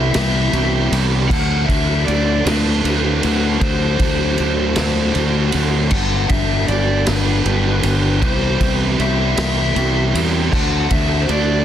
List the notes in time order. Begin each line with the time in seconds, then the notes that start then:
Already playing: C2 C3 E3 G3 B3 E4 G4
0.11 C3 E3 G3 E4 E5, ride
0.15 C2 B3 G4, snare
0.52 C2 C3 E3 G3 B3 E4 G4, ride
0.91 C2 C3 E3 G3 B3 E4 G4, ride
1.29 D2 D3 F#3 A3 C4 D4 F#5, kick, crash
1.33 F#4
1.65 D3 C4 E5, kick
1.69 D2 F#3 A3 D4 F#4, ride
2.05 D2 D3 F#3 A3 C4 D4 D5, ride
2.09 F#4
2.45 D2 D3 F#3 A3 C4 D4 F#4 B4, snare, ride
2.84 D2 D3 F#3 A3 C4 D4 F#4, ride
3.23 D2 D3 F#3 A3 C4 D4 F#4, ride
3.61 D2 D3 F#3 A3 C4 D4 F#4 C5, kick, ride
3.99 D2 D3 F#3 A3 C4 D4 F#4, kick, ride
4.38 D2 D3 F#3 A3 C4 D4, ride
4.42 F#4
4.76 D2 D3 F#3 A3 C4 D4 F#4, snare, ride
5.15 D2 D3 F#3 A3 C4 D4 F#4, ride
5.52 D2 D3 F#3 A3 C4 D4 F#4, ride
5.91 G1 G2 D3 F#3 G3 B3 D4 G4 F#5, kick, crash
6.29 G1 G2 D3 F#3 G3 B3 D4 G4 E5, kick, ride
6.67 G1 G2 D3 F#3 G3 B3 D4 G4 D5, ride
7.06 G1 G2 D3 F#3 G3 B3 D4 G4 B4, snare, ride
7.44 G1 G2 D3 F#3 G3 B3 D4 G4, ride
7.82 G1 G2 D3 F#3 G3 B3 D4 G4, ride
8.20 C2 C3 E3 G3 B3 C4 E4 G4 C5, kick, ride
8.59 C2 C3 E3 G3 B3 C4 E4 G4, kick, ride
8.77 B4
8.97 C2 C3 E3 G3 B3 C4 E4 G4 E5, ride
9.36 C2 C3 E3 G3 B3 C4 E4 G4 E5, snare, ride
9.75 C2 C3 E3 G3 B3 C4 E4 G4, ride
10.14 E2 C3 E3 G3 B3 C4 E4 G4, ride
10.52 D2 D3 A3 C4 D4 F#4 F#5, kick, crash
10.90 D2 D3 A3 C4 D4 F#4 E5, kick, ride
11.21 C5
11.29 D2 D3 A3 C4 D4 F#4 D5, ride